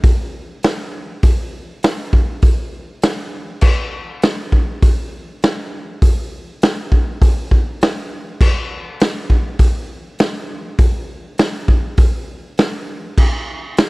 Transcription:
0.04 kick, open hi-hat
0.63 snare, open hi-hat
1.23 kick, open hi-hat
1.83 snare, open hi-hat
2.13 kick
2.42 kick, open hi-hat
3.02 snare, open hi-hat
3.61 kick, crash
4.22 snare, open hi-hat
4.52 kick
4.82 kick, open hi-hat
5.42 snare, open hi-hat
6.02 kick, open hi-hat
6.62 snare, open hi-hat
6.92 kick
7.22 kick, open hi-hat
7.51 kick
7.81 snare, open hi-hat
8.41 kick, crash
9.00 snare, open hi-hat
9.30 kick
9.59 kick, open hi-hat
10.19 snare, open hi-hat
10.79 kick, open hi-hat
11.38 snare, open hi-hat
11.68 kick
11.97 kick, open hi-hat
12.58 snare, open hi-hat
13.18 kick, crash
13.77 snare, open hi-hat

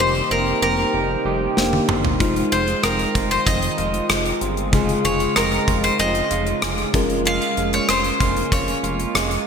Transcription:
Already playing: C3 D#3 G3 A#3 D#4 G4 C5
0.00 F1 A#3 C5
0.31 F1 C4 A#4
0.62 F1 G4 A#4
0.94 F1 C4
1.25 F1 G4
1.57 F1 A#3 D4 G4 C5, snare
1.63 D#4
1.73 high tom
1.89 G1 C4, mid tom
2.05 floor tom
2.19 F1 D#3 G#3 D#4 F4 C5, kick, closed hi-hat
2.36 closed hi-hat
2.52 F1 G#3 C5, closed hi-hat
2.68 closed hi-hat
2.83 F1 C4 A#4, cross-stick, closed hi-hat
2.99 closed hi-hat
3.15 F1 F4, kick, closed hi-hat
3.31 C5, closed hi-hat
3.46 F1 C4 D#5, kick, closed hi-hat
3.62 closed hi-hat
3.78 F1 F4, closed hi-hat
3.94 closed hi-hat
4.09 F1 G#3, cross-stick, closed hi-hat
4.25 closed hi-hat
4.41 G1 C4, closed hi-hat
4.57 closed hi-hat
4.72 F1 C#3 G#3 F4 G#4, kick, closed hi-hat
4.89 closed hi-hat
5.04 F1 G#3 C#5, closed hi-hat
5.20 closed hi-hat
5.36 F1 C4 A#4, cross-stick, closed hi-hat
5.52 closed hi-hat
5.68 F1 F4, kick, closed hi-hat
5.84 C5, closed hi-hat
5.99 F1 C4 D#5, closed hi-hat
6.15 closed hi-hat
6.31 F1 F4, closed hi-hat
6.47 closed hi-hat
6.62 F1 G#3, cross-stick, closed hi-hat
6.78 closed hi-hat
6.93 F1 G#3 A#3 C#4 F4 A#4, kick, closed hi-hat
7.10 closed hi-hat
7.25 G#3 F4 F5, closed hi-hat
7.42 closed hi-hat
7.57 F1 G#3, closed hi-hat
7.73 C#5, closed hi-hat
7.89 F1 C#4 C5, cross-stick, closed hi-hat
8.04 closed hi-hat
8.20 F1 F4, kick, closed hi-hat
8.37 closed hi-hat
8.52 F1 C#4 C#5, kick, closed hi-hat
8.68 closed hi-hat
8.83 F1 F4, closed hi-hat
9.00 closed hi-hat
9.15 F1 G#3, cross-stick, closed hi-hat
9.31 closed hi-hat

